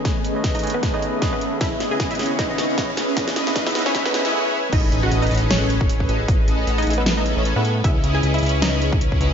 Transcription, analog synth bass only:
X:1
M:4/4
L:1/16
Q:"Swing 16ths" 1/4=154
K:Alyd
V:1 name="Analog synth bass" clef=bass
z16 | z16 | z16 | A,,,2 A,,,2 A,,,2 A,,,8 A,,,2 |
A,,,2 A,,,2 A,,,2 A,,,4- A,,, A,,,2 A,,3 | C,,2 C,,2 C,,2 C,,8 C,,2 |]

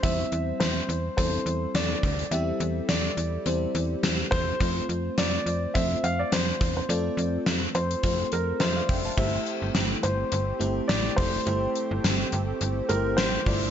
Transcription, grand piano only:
X:1
M:4/4
L:1/16
Q:"Swing 16ths" 1/4=105
K:Aphr
V:1 name="Grand piano"
e4 c4 c4 d4 | e4 d6 z4 c2- | c2 z2 d4 e2 f d c3 c | d4 z2 c4 B2 c4 |
e6 c6 d2 c2- | c4 z6 B2 c4 |]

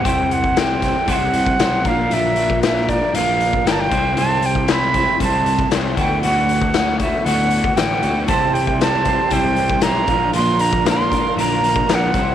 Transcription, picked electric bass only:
X:1
M:4/4
L:1/8
Q:1/4=116
K:Clyd
V:1 name="Picked electric bass" clef=bass
C,,4 C,,2 B,,, _B,,, | _B,,,4 B,,,2 G,,, C,, | C,,4 C,,2 C,, D,, | D,,4 D,,2 A,,, D,, |
C,,4 C,,2 B,,, _B,,, | _B,,,4 B,,,2 B,,, C,, |]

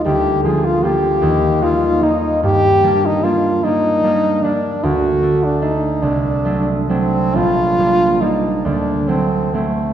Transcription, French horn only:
X:1
M:6/8
L:1/16
Q:3/8=50
K:Eb
V:1 name="French horn"
G2 A F G4 F2 E2 | [K:Gm] G3 E F2 E4 D2 | ^F3 D E2 D4 C2 | F4 E2 D2 C2 A,2 |]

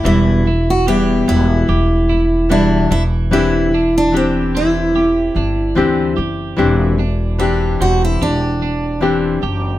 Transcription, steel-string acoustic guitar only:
X:1
M:4/4
L:1/16
Q:"Swing 16ths" 1/4=74
K:Clyd
V:1 name="Steel-string acoustic guitar"
E3 F G2 E6 D2 E2 | E3 D C2 E8 z2 | z4 D2 F E D6 z2 |]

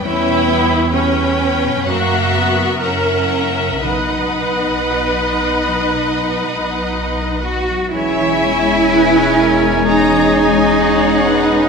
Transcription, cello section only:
X:1
M:4/4
L:1/8
Q:1/4=62
K:C#dor
V:1 name="Cello section"
C B, C2 A, B, C2 | D6- D F | E4 D4 |]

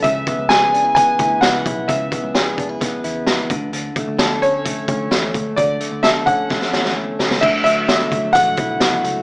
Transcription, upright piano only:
X:1
M:4/4
L:1/8
Q:1/4=130
K:Dlyd
V:1 name="Upright piano"
e2 g2 g2 f2 | e2 z6 | z3 c4- c | d2 e f3 z2 |
e e3 f4 |]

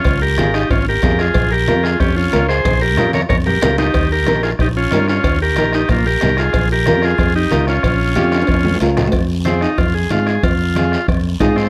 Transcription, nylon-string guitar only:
X:1
M:4/4
L:1/8
Q:1/4=185
K:Fm
V:1 name="Nylon-string guitar"
z2 [DFA] z3 [DFA] z | z2 [DFB] z3 [DFB] z | z2 [DFB] z3 [DFB] z | z2 [EGB] z3 [EGB] z |
z2 [EGB] z3 [EGB] z | z2 [DFB] z3 [DFB] z | z2 [DFG] z3 [DFB] z | z2 [CFA] z3 [CFA] z |
z2 [CFA] z3 [CFA] z |]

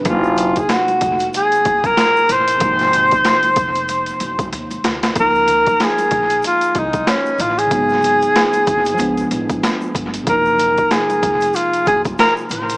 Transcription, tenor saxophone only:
X:1
M:4/4
L:1/16
Q:"Swing 16ths" 1/4=94
K:Db
V:1 name="Tenor saxophone"
F3 A G4 A3 B3 c2- | c12 z4 | B4 A4 F2 E2 D2 F A- | A8- A3 z4 z |
B4 A4 F2 A2 B2 c2 |]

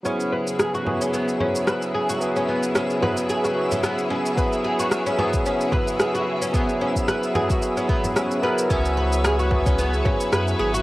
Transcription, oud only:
X:1
M:4/4
L:1/16
Q:"Swing 16ths" 1/4=111
K:C#m
V:1 name="Oud"
C2 B z G F2 C B, z C2 B z G F- | F C B, z C2 B z G F2 C B, z C2 | B z G F2 C B, z C2 B z G F2 C | B, z C2 B z G F2 C B, z C2 B z |
C2 B z G F2 C B, z C2 B z G F |]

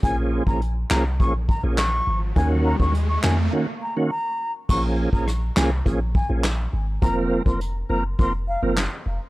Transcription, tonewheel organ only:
X:1
M:4/4
L:1/16
Q:1/4=103
K:Bbm
V:1 name="Tonewheel organ"
[F,B,DA]3 [F,B,DA] z2 [F,B,DA] z [F,B,DA] z2 [F,B,DA] z4 | [E,B,DG]3 [E,B,DG] z2 [E,B,DG] z [E,B,DG] z2 [E,B,DG] z4 | [F,B,DA]3 [F,B,DA] z2 [F,B,DA] z [F,B,DA] z2 [F,B,DA] z4 | [F,B,CB]3 [F,B,CB] z2 [F,B,CB] z [F,B,CB] z2 [F,B,CB] z4 |]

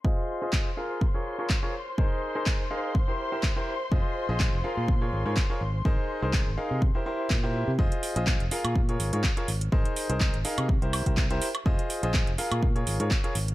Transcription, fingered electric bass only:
X:1
M:4/4
L:1/16
Q:"Swing 16ths" 1/4=124
K:Fm
V:1 name="Fingered electric bass" clef=bass
z16 | z16 | F,,, z2 B,,,2 F,,, z B,,3 A,,, A,, z2 A,,,2 | z3 C,,2 A,,, z C,2 z3 B,,3 C, |
F,,, z2 B,,,2 F,,, z B,,3 A,,, A,, z2 A,,,2 | A,,, z2 C,,2 A,,, z C,2 C,,2 C,,3 z2 | F,,, z2 B,,,2 F,,, z B,,3 A,,, A,, z2 A,,,2 |]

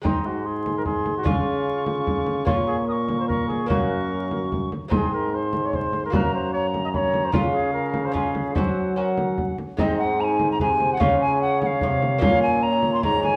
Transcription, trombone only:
X:1
M:3/4
L:1/8
Q:1/4=148
K:Abmix
V:1 name="Trombone" clef=bass
A,,6 | D,6 | B,,6 | G,,4- G,, z |
A,,6 | G,,6 | D,6 | G,4- G, z |
A,,4 C,2 | D,4 C,2 | B,,4 A,,2 |]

